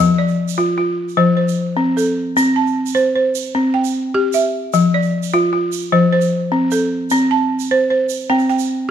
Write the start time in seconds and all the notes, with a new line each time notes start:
Already playing: A5
0.00 F3
0.18 D5
0.28 shaker
0.48 shaker
0.58 F4, shaker
0.78 F4
1.09 shaker
1.17 F3 C5
1.37 C5
1.48 shaker
1.77 C4
1.97 A4, shaker
2.37 C4, shaker
2.56 A5
2.67 shaker
2.86 shaker
2.95 C5, shaker
3.15 C5
3.35 shaker
3.45 shaker
3.55 C4
3.74 G5
3.84 shaker
4.14 G4
4.33 E5, shaker
4.73 F3, shaker
4.94 D5
5.03 shaker
5.23 shaker
5.32 F4, shaker
5.53 F4
5.72 shaker
5.81 shaker
5.92 F3 C5
6.13 C5
6.21 shaker
6.52 C4
6.71 A4, shaker
7.10 C4, shaker
7.31 A5
7.60 shaker
7.71 C5
7.90 C5
8.09 shaker
8.20 shaker
8.30 C4 G5
8.39 shaker
8.49 G5, shaker
8.59 shaker